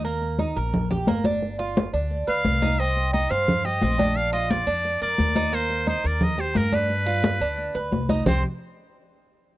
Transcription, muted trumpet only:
X:1
M:4/4
L:1/8
Q:1/4=175
K:Cm
V:1 name="Muted trumpet"
z8 | z4 z f3 | e2 e f2 e3 | f e d3 d3 |
c2 c d e c B =B- | =B6 z2 | c z6 z |]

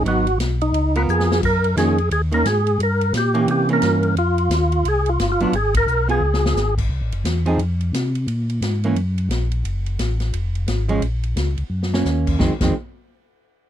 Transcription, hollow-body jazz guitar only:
X:1
M:4/4
L:1/8
Q:"Swing" 1/4=175
K:Fphr
V:1 name="Hollow-body jazz guitar"
[G,_CE] z4 [=B,F_B]3 | z2 [E,B,D] z2 [E,B,D] z2 | z3 [=E,B,D]2 [E,B,D]3 | z6 z [G,=B,=D] |
z3 [_CFA] z4 | z3 [F,CEA] z4 | z3 [=E,B,D] z4 | z6 z [F,A,D] |
z4 z [B,D]3 | [E,A,C] [E,A,C] z6 |]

